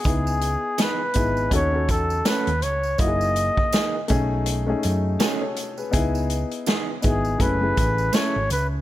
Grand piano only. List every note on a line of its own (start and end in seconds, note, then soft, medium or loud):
0.04 1.02 B3 medium
0.04 1.02 D#4 medium
0.04 1.03 E4 medium
0.04 1.04 G#4 medium
1.14 1.52 B3 medium
1.14 1.49 D#4 medium
1.14 1.52 E4 medium
1.14 1.53 G#4 medium
1.50 1.69 C#4 medium
1.50 1.70 D#4 medium
1.50 1.71 F#4 medium
1.50 1.71 A4 medium
1.72 2.84 C#4 medium
1.72 2.84 D#4 medium
1.72 2.85 F#4 medium
1.72 2.85 A4 medium
2.98 3.96 A#3 medium
2.98 3.96 D#4 medium
2.98 3.97 E4 medium
2.98 3.08 F#4 medium
3.08 4.01 G#4 medium
4.08 4.58 A3 medium
4.08 4.59 C#4 medium
4.08 4.59 D#4 medium
4.08 4.60 G#4 medium
4.67 5.78 A3 medium
4.67 5.78 C#4 medium
4.67 5.79 D#4 medium
4.67 5.21 G#4 medium
5.20 5.41 F#4 medium
5.20 5.40 A4 medium
5.41 5.76 A4 medium
5.41 5.76 C#5 medium
5.78 5.92 G#4 medium
5.78 6.13 B4 medium
5.91 6.90 B3 medium
5.91 6.90 D#4 medium
5.91 6.91 E4 medium
5.91 6.91 G#4 medium
7.01 7.39 B3 medium
7.01 7.40 D#4 medium
7.01 7.39 E4 medium
7.01 7.40 G#4 medium
7.39 7.58 A3 medium
7.39 7.58 C#4 medium
7.39 7.59 E4 medium
7.39 7.59 G#4 medium
7.61 8.72 A3 medium
7.61 8.72 C#4 medium
7.61 8.72 E4 medium
7.61 8.73 G#4 medium